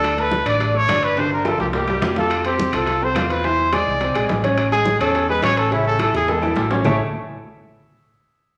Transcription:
Already playing: D2 D4 A4 D5
0.03 high bongo, high conga, high timbale, claves
0.17 A3 A4 B4, high bongo, high conga, high timbale
0.31 high bongo, high conga, low timbale
0.45 A1 D4 D5, high bongo, high conga, high timbale, claves
0.60 high bongo, high conga, high timbale
0.74 A3 A4 C#5, high bongo, high conga
0.87 G1 D4 D5, high bongo, low bongo, high conga, high timbale, low timbale, claves
1.03 B4, high conga, high timbale
1.16 D3 D4 C5, high bongo, high conga, high timbale
1.31 A#4, high bongo, high conga
1.45 F3 F4 A4, high bongo, high conga, high timbale, claves
1.58 C2 G4, high bongo, high conga, low timbale
1.73 A#3 G4 A#4, high bongo, high conga, low timbale
1.88 G3 G4, high conga, low timbale, claves
2.01 F2, high bongo, low bongo, high conga, low timbale
2.16 F4 A4 F5, high bongo, high conga, low timbale
2.30 high bongo, high conga, high timbale, claves
2.45 C4 G4 C5, high bongo, high conga, high timbale
2.58 high bongo, high conga, low timbale
2.72 C2 F4 A4 F5, high bongo, high conga, high timbale, claves
2.86 high bongo, high conga, high timbale
3.01 C4 C5, high bongo, high conga
3.15 E2 F4 F5, high bongo, low bongo, high conga, high timbale, low timbale, claves
3.30 B4, high conga, high timbale
3.44 E3 E4 C5, high bongo, high conga
3.58 high bongo, high conga
3.72 G#3 G#4 D5, high bongo, high conga, high timbale, low timbale, claves
3.86 C2, high bongo, high conga
4.01 C4 C5, high bongo, high conga, high timbale
4.14 A#1 G#3 G#4, high conga, high timbale, claves
4.29 A1, high bongo, low bongo, high conga, low timbale
4.44 C#4 C#5, high bongo, high conga, high timbale
4.57 high bongo, high conga, high timbale, claves
4.71 G#3 G#4, high bongo, high conga, high timbale
4.85 high bongo, high conga, low timbale
4.99 E2 C#4 A4 C#5, high bongo, high conga, high timbale, claves
5.14 high bongo, high conga, high timbale
5.28 G#3 G#4 B4, high bongo, high conga
5.42 A1 C#4 C#5, high bongo, low bongo, high conga, high timbale, low timbale, claves
5.56 A4, high conga, high timbale
5.71 C#3 C#4 E4, high bongo, high conga
5.85 A4, high bongo, high conga
5.99 E3 E4 A4, high bongo, high conga, high timbale, low timbale, claves
6.14 E2 G#4, high bongo, high conga
6.28 G#3 G#4 A4, high bongo, high conga, high timbale
6.42 E3 E4, low bongo, high conga, low timbale, claves
6.56 A1, high conga, low timbale
6.71 C#4 C#5, low bongo, high conga, low timbale
6.84 A1 A3 E4 G#4 A4 C#5 E5, low bongo, low conga, low timbale, claves

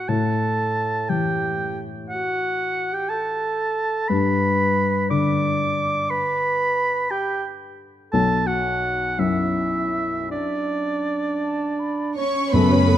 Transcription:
Already playing: F#4
0.08 A2 A4 A5
1.09 E3 G4 G5
2.10 F#4 F#5
2.93 G4 G5
3.09 A4 A5
4.08 G2 B4 B5
5.10 D3 D5 D6
6.10 B4 B5
7.10 G4 G5
8.13 B1 A4 A5
8.47 F#4 F#5
9.18 F#2 E4 E5
10.30 D4 D5
11.42 A5
11.79 B5
12.17 C#4 C#5 C#6
12.52 F#2 A3 B3 C#4 A4 B4 B5
12.71 C#4 F#4 C#5
12.87 A3 A4

